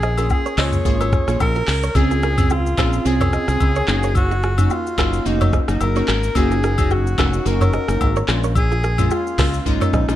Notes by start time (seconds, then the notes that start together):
Already playing: A#1 G#4
0.03 C5 D#5, cross-stick, shaker
0.18 A#3 C#4 F4 F#4 G#4 A#4, high agogo, shaker
0.30 G#4, kick, low woodblock, shaker
0.46 A#4 C#5, shaker
0.58 C#2 A#3 C#4 F4 G#4 C5 C#5 D#5, cross-stick, clap, open hi-hat, high agogo, shaker
0.72 mid tom, shaker
0.85 G#1 A#3 C#4 F4 G#4, kick, shaker
1.01 F#4 A#4, high agogo, shaker
1.12 kick, cross-stick, mid tom, shaker
1.28 A#1 A#3 C#4 F4 G#4, cross-stick, shaker
1.40 A#1 A#4, kick, high agogo, low woodblock, shaker
1.55 F#4 A#4, shaker
1.68 C#2, cross-stick, clap, open hi-hat, shaker
1.83 A#4 C#5, shaker
1.95 C#2 C4 C#4 F4 G#4, kick, high agogo, shaker
2.11 F4 G#4, shaker
2.23 F#4 A#4, cross-stick, shaker
2.38 C4 C#4 F4 G#4, kick, mid tom, high agogo, shaker
2.50 F4 G#4, low woodblock, shaker
2.66 shaker
2.78 A#1 C4 C#4 F4 G#4 C5, kick, cross-stick, clap, high agogo, shaker
2.93 shaker
3.05 C2 C4 C#4 F4 G#4, shaker
3.21 A#4 C#5, mid tom, high agogo, shaker
3.33 C5 D#5, cross-stick, shaker
3.48 C2 C4 C#4 F4 G#4, cross-stick, shaker
3.60 C#2, kick, high agogo, shaker
3.76 A#4 C#5, shaker
3.88 F#1 A#3 C#4 D#4 F#4, cross-stick, clap, shaker
4.03 A#4 C#5, shaker
4.15 F#4, kick, high agogo, shaker
4.31 D#4 F#4, shaker
4.43 F4 G#4, cross-stick, shaker
4.58 A#3 C#4 D#4 F#4, mid tom, high agogo, shaker
4.70 D#4 F4 F#4, low woodblock, shaker
4.87 shaker
4.98 F#1 A#3 C#4 D#4 F#4 A#4, kick, cross-stick, clap, high agogo, shaker
5.13 shaker
5.25 F1 A#3 C#4 D#4 F#4, shaker
5.41 A#4 C#5, mid tom, high agogo, shaker
5.53 C5 D#5, kick, cross-stick, shaker
5.68 F#1 A#3 C#4 D#4 F#4, cross-stick, shaker
5.81 F#1 A#4, high agogo, shaker
5.96 A#3 C#4 D#4 F#4 A#4 C#5, shaker
6.08 G#1 F#4 A#4, cross-stick, clap, shaker
6.23 shaker
6.35 F#1 A#3 C#4 D#4 F#4 G#4, kick, high agogo, shaker
6.51 F4 G#4, shaker
6.63 F#4 A#4, cross-stick, shaker
6.78 A#3 C#4 D#4 F#4, kick, mid tom, high agogo, shaker
6.90 D#4 F#4 G#4, low woodblock, shaker
7.07 shaker
7.18 F1 A#3 C#4 D#4 F#4 A#4, kick, cross-stick, clap, high agogo, shaker
7.33 shaker
7.45 F#1 A#3 C#4 D#4 F#4 A#4, shaker
7.61 A#4 C#5, mid tom, high agogo, shaker
7.73 C5 D#5, cross-stick, shaker
7.88 F#1 A#3 C#4 D#4 F#4, cross-stick, shaker
8.01 G#1, kick, high agogo, shaker
8.16 A#4 C#5, shaker
8.28 A#1 G#3 A#3 C#4 F4, cross-stick, clap, shaker
8.44 A#4 C#5, shaker
8.55 G#4, kick, high agogo, shaker
8.72 F4 G#4, shaker
8.84 F#4 A#4, cross-stick, shaker
8.98 G#3 A#3 C#4 F4, mid tom, high agogo, shaker
9.10 F4 G#4, low woodblock, shaker
9.27 shaker
9.38 C#2 G#3 A#3 C#4 F4 F#4 A#4, kick, cross-stick, clap, open hi-hat, high agogo, shaker
9.54 shaker
9.60 F4
9.66 G#1 G#3 A#3 C#4 D#4 F4, kick, shaker
9.81 A#4 C#5, mid tom, high agogo, shaker
9.93 A#1 C5 D#5, kick, cross-stick, shaker
10.08 A#1 G#3 A#3 C#4 D#4 F4, cross-stick, shaker